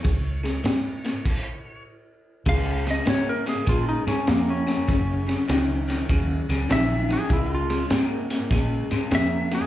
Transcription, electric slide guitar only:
0.00 1.82 C#5 medium
2.49 2.87 F5 medium
2.91 3.08 D#5 medium
3.10 3.28 C#5 medium
3.29 3.48 A#4 medium
3.49 3.68 G#4 medium
3.69 3.88 F4 medium
3.89 4.08 D#4 medium
4.08 4.27 C#4 medium
4.28 4.48 A#3 medium
4.50 6.26 C#4 medium
6.72 7.10 E5 medium
7.13 7.31 G#4 medium
7.33 7.51 E4 medium
7.55 7.85 F4 medium
9.15 9.52 E5 loud
9.55 9.67 G#4 medium

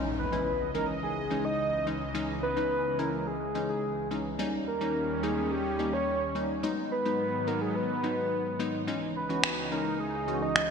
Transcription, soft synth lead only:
0.18 0.71 B4 medium
0.75 0.87 A#4 medium
1.03 1.46 G#4 loud
1.45 1.87 D#5 loud
2.43 3.00 B4 loud
2.99 3.28 A#4 loud
3.27 3.68 G#4 loud
3.69 4.08 G#4 medium
4.67 5.25 A#4 medium
5.23 5.53 G#4 medium
5.51 5.95 G4 loud
5.93 6.35 C#5 loud
6.91 7.49 B4 loud
7.47 7.63 A#4 loud
7.61 7.77 G#4 medium
7.75 8.60 B4 loud
9.16 9.73 B4 medium
9.72 10.01 A#4 medium
10.00 10.43 G#4 loud
10.42 10.71 D#5 loud

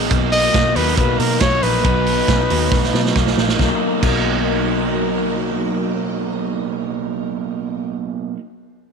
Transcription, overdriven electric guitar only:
0.00 0.10 E3 medium
0.00 0.11 G#3 medium
0.00 0.11 B3 medium
0.00 0.11 D#4 medium
0.11 0.44 B2 medium
0.11 0.44 F#3 medium
0.11 0.44 A#3 medium
0.11 0.43 D#4 medium
0.44 0.76 F#3 soft
0.44 0.77 A#3 soft
0.44 0.77 D#4 medium
0.76 1.09 B2 medium
0.76 1.10 F#3 medium
0.76 1.08 A#3 medium
0.76 1.07 D#4 medium
1.08 1.41 F#3 soft
1.08 1.42 A#3 medium
1.08 1.41 D#4 medium
1.41 1.62 B2 medium
1.41 1.63 F#3 medium
1.41 1.64 A#3 medium
1.41 1.64 D#4 medium
1.63 1.83 B2 medium
1.63 1.84 F#3 medium
1.63 1.86 A#3 medium
1.63 1.84 D#4 medium
1.84 2.17 B2 medium
1.84 2.18 F#3 medium
1.84 2.16 D#4 medium
2.17 2.49 F#3 medium
2.17 2.50 D#4 medium
2.50 2.83 B2 medium
2.50 2.83 F#3 medium
2.50 2.81 D#4 medium
2.83 3.16 F#3 soft
2.83 3.15 D#4 medium
3.16 3.37 B2 medium
3.16 3.37 F#3 medium
3.16 3.38 A#3 medium
3.16 3.39 D#4 medium
3.38 3.57 B2 medium
3.38 3.60 F#3 medium
3.38 3.60 A#3 medium
3.38 3.61 D#4 medium
3.59 4.02 B2 medium
3.59 4.04 F#3 medium
3.59 4.06 A#3 medium
3.64 4.07 D#4 medium
4.03 8.35 B2 medium
4.03 8.36 F#3 loud
4.03 8.38 A#3 medium
4.08 8.40 D#4 medium

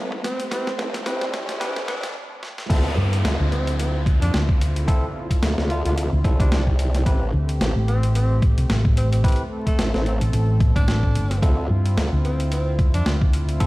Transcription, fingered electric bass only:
2.97 3.23 G2 loud
3.40 4.19 D2 medium
4.22 4.32 F2 medium
4.34 4.86 D2 loud
6.13 6.23 D2 medium
7.34 7.59 D2 loud
7.76 8.55 A1 medium
8.58 8.68 C2 medium
8.69 9.22 A1 loud
10.21 10.32 A1 loud
10.33 10.74 A1 loud
10.76 11.13 A1 medium
11.15 11.41 G1 medium
11.70 11.95 G2 medium
12.13 12.92 D2 loud
12.94 13.04 F2 medium
13.06 13.59 D2 loud

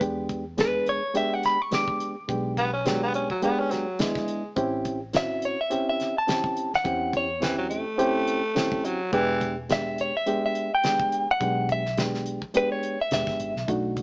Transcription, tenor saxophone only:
2.58 2.72 B3 medium
2.73 2.88 C#4 medium
2.87 3.01 F#3 medium
3.03 3.14 B3 medium
3.15 3.29 C#4 medium
3.31 3.42 F#3 medium
3.44 3.61 B3 medium
3.60 3.73 C#4 medium
3.71 4.02 F#3 medium
4.00 4.55 G#3 medium
7.42 7.57 E3 medium
7.58 7.69 F#3 medium
7.70 8.87 A3 medium
8.85 9.12 F#3 medium
9.13 9.56 E3 loud

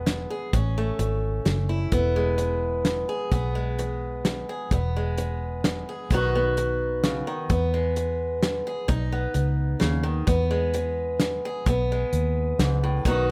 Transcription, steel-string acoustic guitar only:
0.00 0.51 G#3 medium
0.00 0.53 B3 medium
0.06 0.48 B2 medium
0.30 0.51 G#4 medium
0.53 0.95 A2 medium
0.53 1.90 C#4 medium
0.78 1.90 A3 medium
0.99 1.41 E3 medium
1.45 1.88 E2 medium
1.69 3.08 E4 medium
1.92 2.34 E2 medium
1.92 3.32 B3 medium
2.16 3.55 G#3 medium
2.38 2.80 E3 medium
2.85 3.27 B2 medium
3.09 4.49 G#4 medium
3.32 3.74 E2 medium
3.32 4.73 B3 medium
3.55 4.68 G#3 medium
3.79 4.21 E3 medium
4.26 4.67 B2 medium
4.49 4.69 G#4 medium
4.72 5.14 E2 medium
4.72 6.13 B3 medium
4.97 6.09 G#3 medium
5.18 5.60 E3 medium
5.65 6.06 B2 medium
5.89 6.08 G#4 medium
6.12 6.53 B2 medium
6.12 6.57 D#3 medium
6.12 6.35 B3 medium
6.12 7.49 D#4 medium
6.12 7.49 F#4 medium
6.35 7.51 B3 medium
6.58 6.99 D#3 medium
7.04 7.27 C#3 medium
7.27 7.50 D#3 medium
7.50 7.92 E2 medium
7.50 8.88 B3 medium
7.74 8.86 G#3 medium
7.97 8.38 E3 medium
8.43 8.85 B2 medium
8.67 8.87 G#4 medium
8.88 9.30 B2 medium
8.88 10.25 D#4 medium
9.12 10.28 B3 medium
9.34 9.76 D#3 medium
9.80 10.04 C#3 medium
10.03 10.27 D#3 medium
10.27 10.69 E2 medium
10.27 11.68 B3 medium
10.51 11.64 G#3 medium
10.74 11.16 E3 medium
11.21 11.62 B2 medium
11.45 11.65 G#4 medium
11.67 12.09 E2 medium
11.67 13.07 B3 medium
11.92 13.04 G#3 medium
12.60 12.83 G#2 medium
12.84 13.05 A2 medium
13.06 13.31 B2 medium
13.06 13.31 D#3 medium
13.06 13.28 B3 medium
13.06 13.31 D#4 medium
13.06 13.31 F#4 medium

